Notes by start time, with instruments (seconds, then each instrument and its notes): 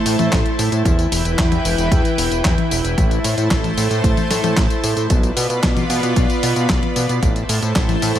Already playing: analog synth pad A3 E4 C5 A5
0.06 analog synth bass A2, open hi-hat, tambourine
0.19 analog synth bass A2, closed hi-hat, high tom, tambourine
0.32 analog synth bass A1, kick, snare, clap, closed hi-hat, tambourine
0.46 closed hi-hat
0.59 analog synth bass A2, open hi-hat, tambourine
0.72 analog synth bass A2, closed hi-hat, tambourine
0.85 analog synth bass E2, analog synth pad E3 B4 G5, kick, closed hi-hat, tambourine
0.99 closed hi-hat, tambourine
1.12 analog synth bass E1, open hi-hat, tambourine
1.25 analog synth bass E1, closed hi-hat, tambourine
1.38 analog synth bass E2, kick, snare, clap, closed hi-hat, tambourine
1.52 closed hi-hat, high tom, tambourine
1.65 analog synth bass E1, open hi-hat, tambourine
1.78 analog synth bass E1, closed hi-hat, tambourine
1.92 analog synth bass E2, kick, closed hi-hat, tambourine
2.05 closed hi-hat, tambourine
2.18 analog synth bass E1, open hi-hat, tambourine
2.31 analog synth bass E1, closed hi-hat, tambourine
2.45 analog synth bass E2, kick, snare, clap, closed hi-hat, tambourine
2.58 closed hi-hat, high tom
2.71 analog synth bass E1, open hi-hat, tambourine
2.84 analog synth bass E1, closed hi-hat, tambourine
2.97 analog synth bass A1, analog synth pad A3 C5 A5, kick, closed hi-hat, tambourine
3.11 closed hi-hat, tambourine
3.24 analog synth bass A2, open hi-hat, tambourine
3.38 analog synth bass A2, closed hi-hat, tambourine
3.51 analog synth bass A1, kick, snare, clap, closed hi-hat, tambourine
3.64 closed hi-hat, high tom, tambourine
3.77 analog synth bass A2, open hi-hat, tambourine
3.91 analog synth bass A2, closed hi-hat, tambourine
4.04 analog synth bass A1, kick, closed hi-hat, tambourine
4.17 closed hi-hat, high tom, tambourine
4.31 analog synth bass A2, snare, open hi-hat, tambourine
4.44 analog synth bass A2, closed hi-hat, high tom, tambourine
4.57 analog synth bass A1, kick, snare, clap, closed hi-hat, tambourine
4.70 closed hi-hat, tambourine
4.84 analog synth bass A2, open hi-hat, tambourine
4.97 analog synth bass A2, closed hi-hat, tambourine
5.10 analog synth bass B1, analog synth pad B3 F4 D5 B5, kick, closed hi-hat, tambourine
5.23 closed hi-hat, tambourine
5.37 analog synth bass B2, open hi-hat, tambourine
5.50 analog synth bass B2, closed hi-hat, tambourine
5.63 analog synth bass B1, kick, snare, clap, closed hi-hat, tambourine
5.77 closed hi-hat, high tom, tambourine
5.90 analog synth bass B2, open hi-hat, tambourine
6.03 analog synth bass B2, closed hi-hat, tambourine
6.16 analog synth bass B1, kick, closed hi-hat, tambourine
6.30 closed hi-hat, tambourine
6.43 analog synth bass B2, open hi-hat, tambourine
6.56 analog synth bass B2, closed hi-hat, tambourine
6.69 analog synth bass B1, kick, snare, clap, closed hi-hat, tambourine
6.83 closed hi-hat, high tom
6.96 analog synth bass B2, open hi-hat, tambourine
7.09 analog synth bass B2, closed hi-hat, tambourine
7.23 analog synth bass A1, analog synth pad A3 E4 C5 A5, kick, closed hi-hat, tambourine
7.36 closed hi-hat, tambourine
7.49 analog synth bass A2, open hi-hat, tambourine
7.62 analog synth bass A2, closed hi-hat, tambourine
7.76 analog synth bass A1, kick, snare, clap, closed hi-hat, tambourine
7.89 closed hi-hat, high tom, tambourine
8.02 analog synth bass A2, open hi-hat, tambourine
8.16 analog synth bass A2, closed hi-hat, tambourine